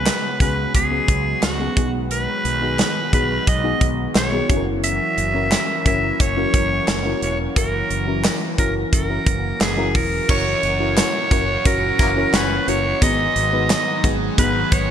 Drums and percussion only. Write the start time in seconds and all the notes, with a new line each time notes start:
0.06 snare, clap, closed hi-hat
0.40 kick, closed hi-hat
0.75 kick, closed hi-hat
1.08 kick, closed hi-hat
1.43 snare, clap, closed hi-hat
1.77 kick, closed hi-hat
2.11 closed hi-hat
2.45 closed hi-hat
2.79 snare, clap, closed hi-hat
3.13 kick, closed hi-hat
3.47 kick, closed hi-hat
3.81 kick, closed hi-hat
4.15 snare, clap, closed hi-hat
4.50 kick, closed hi-hat
4.84 closed hi-hat
5.18 closed hi-hat
5.52 snare, clap, closed hi-hat
5.86 kick, closed hi-hat
6.20 kick, closed hi-hat
6.54 kick, closed hi-hat
6.88 snare, clap, closed hi-hat
7.22 closed hi-hat
7.56 kick, closed hi-hat
7.90 closed hi-hat
8.24 snare, clap, closed hi-hat, tambourine
8.58 kick, closed hi-hat
8.93 kick, closed hi-hat
9.26 kick, closed hi-hat
9.61 snare, clap, closed hi-hat, tambourine
9.95 kick, open hi-hat
10.29 kick, crash
10.63 closed hi-hat
10.97 snare, clap, closed hi-hat, tambourine
11.31 kick, closed hi-hat
11.65 kick, closed hi-hat
11.99 kick, closed hi-hat
12.34 snare, clap, closed hi-hat, tambourine
12.68 closed hi-hat
13.02 kick, closed hi-hat
13.36 closed hi-hat
13.70 snare, clap, closed hi-hat, tambourine
14.04 kick, closed hi-hat
14.38 kick, closed hi-hat
14.72 kick, closed hi-hat